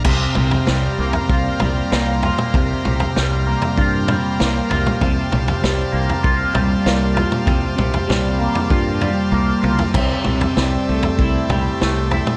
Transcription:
0.04 C2 C3 G4 C5 F5 A#5, kick, floor tom, crash
0.35 C2 C3, mid tom
0.51 floor tom
0.67 C2 G3, snare
0.99 C2 A#3
1.13 floor tom
1.29 C2 F4, kick
1.60 C2 G3, floor tom, mid tom
1.92 C2 A#3, snare
2.23 F4, floor tom
2.38 mid tom
2.54 C2 C3, kick, floor tom
2.85 C2 C3, mid tom
3.00 floor tom
3.16 C2 G3, snare
3.47 A#3
3.62 floor tom
3.78 G2 F4, kick
4.08 G3, floor tom, mid tom
4.40 C2 A#3, snare
4.70 C2 F4, floor tom
4.86 mid tom
5.01 C2 C3 A5, kick, floor tom
5.31 C2 C3, mid tom
5.48 floor tom
5.61 C2 G3, snare
5.92 C2 A#3
6.10 floor tom
6.23 C2 F4, kick
6.53 C2 G3, floor tom, mid tom
6.84 C2 A#3, snare
7.15 F4, floor tom
7.32 mid tom
7.46 C2 C3, kick, floor tom
7.77 C2 C3, mid tom
7.94 floor tom
8.08 C2 G3, snare, mid tom
8.39 A#3
8.55 floor tom
8.70 G2 F4, kick
9.01 G3, floor tom
9.32 C2 A#3
9.62 C2 F4, high tom
9.79 floor tom
9.93 C2 C3 E5, kick, floor tom, crash
10.24 C2 C3, mid tom
10.41 floor tom
10.57 C2 G3, snare
10.89 C2 A3
11.03 floor tom
11.19 C2 E4, kick
11.49 C2 G3, floor tom, mid tom
11.81 C2 A3, snare
12.11 E4, floor tom
12.27 mid tom

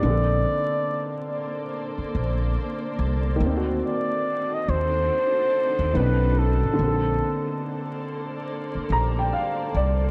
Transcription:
Already playing: D5
0.01 A#1 D3 A#3 A4 C5 D5
0.06 C4
0.10 A4
1.98 muted upright bass stroke
2.15 A#1
2.99 C2
3.36 D#3
3.40 D2 A#3 C4 D4 D#4 F#4 A4
3.46 C4 D#4
3.56 F#4
3.86 D5
4.54 D#5
4.68 D#2 C5
5.79 D#2
5.93 B1 D#3 B3 B4
5.97 C#4 B4
6.38 A4
6.63 G#1
6.73 D3
6.78 A#1 A#3 A4 C5 D5
6.83 C4
6.87 A4
8.75 muted upright bass stroke
8.90 A#1 A#5
9.19 G5
9.33 F5
9.75 C2 D5

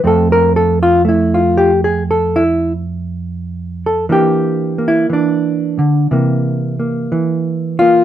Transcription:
0.04 F2 A3 C4 A4
0.32 A#4
0.56 A4
0.83 F4
1.05 A3 E4
1.34 F4
1.57 G4
1.84 G#4
2.11 A4
2.36 E4
3.86 A4
4.09 E3 A#3 D4 G4
4.78 A#3
4.88 E4
5.10 E3 D4
5.79 D3
6.11 C3 E3 A#3
6.80 A#3
7.12 E3
7.79 A#3 F4

